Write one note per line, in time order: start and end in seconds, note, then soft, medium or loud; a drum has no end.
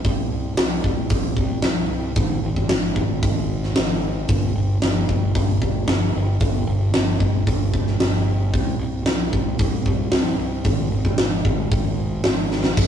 0.04 0.30 C2 medium
0.04 kick loud
0.04 open hi-hat medium
0.31 0.56 C2 medium
0.57 0.82 C2 medium
0.57 snare loud
0.57 open hi-hat medium
0.84 1.09 C2 medium
0.84 kick medium
1.09 1.36 C2 medium
1.09 kick loud
1.09 open hi-hat medium
1.37 1.62 C2 medium
1.37 kick medium
1.62 1.89 C2 medium
1.62 snare loud
1.62 open hi-hat medium
1.89 2.16 C2 medium
2.15 2.41 G#1 medium
2.15 kick loud
2.15 open hi-hat medium
2.43 2.68 G#1 medium
2.56 kick medium
2.69 2.95 G#1 medium
2.69 snare loud
2.69 open hi-hat medium
2.96 3.22 G#1 medium
2.96 kick medium
3.23 3.73 G#1 medium
3.23 kick loud
3.23 open hi-hat medium
3.63 snare soft
3.76 4.27 G#1 medium
3.76 snare loud
3.76 open hi-hat medium
4.28 4.54 G1 medium
4.28 kick loud
4.28 open hi-hat medium
4.55 4.80 G1 medium
4.82 5.07 G1 medium
4.82 snare loud
4.82 open hi-hat medium
5.09 5.34 G1 medium
5.09 kick medium
5.35 5.60 G1 medium
5.35 kick loud
5.35 open hi-hat medium
5.62 5.87 G1 medium
5.62 kick medium
5.88 6.13 G1 medium
5.88 snare loud
5.88 open hi-hat medium
6.14 6.40 G1 medium
6.40 6.66 G1 medium
6.40 kick loud
6.40 open hi-hat medium
6.67 6.92 G1 medium
6.94 7.19 G1 medium
6.94 snare loud
6.94 open hi-hat medium
7.20 7.46 G1 medium
7.20 kick medium
7.47 7.98 G1 medium
7.47 kick loud
7.47 open hi-hat medium
7.74 kick medium
7.87 snare soft
8.00 8.50 G1 medium
8.00 snare loud
8.00 open hi-hat medium
8.53 8.78 C2 medium
8.53 kick loud
8.53 open hi-hat medium
8.79 9.05 C2 medium
9.05 9.31 C2 medium
9.05 snare loud
9.05 open hi-hat medium
9.33 9.58 C2 medium
9.33 kick medium
9.59 9.85 C2 medium
9.59 kick loud
9.59 open hi-hat medium
9.85 10.11 C2 medium
9.85 kick medium
10.12 10.38 C2 loud
10.12 snare loud
10.12 open hi-hat medium
10.39 10.64 C2 medium
10.64 10.91 G#1 medium
10.64 kick loud
10.64 open hi-hat medium
10.92 11.17 G#1 medium
11.05 kick medium
11.18 11.44 G#1 medium
11.18 snare loud
11.18 open hi-hat medium
11.45 11.70 G#1 medium
11.45 kick medium
11.71 12.22 G#1 medium
11.71 kick loud
11.71 open hi-hat medium
12.24 12.75 G#1 medium
12.24 snare loud
12.24 open hi-hat medium
12.51 snare medium
12.64 snare medium
12.77 12.87 G1 medium
12.77 kick loud
12.77 crash loud
12.77 crash medium